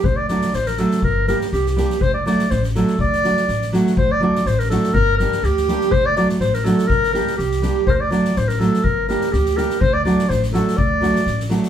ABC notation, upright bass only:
X:1
M:2/4
L:1/8
Q:"Swing 16ths" 1/4=123
K:none
V:1 name="Upright bass" clef=bass
D,,2 A,,,2 | G,,,2 C,,2 | D,,2 A,,,2 | D,,2 A,,,2 |
D,,2 A,,,2 | G,,,2 D,,2 | D,,2 A,,,2 | G,,,2 C,,2 |
D,,2 A,,,2 | G,,,2 D,,2 | D,,2 A,,,2 | D,,2 A,,,2 |]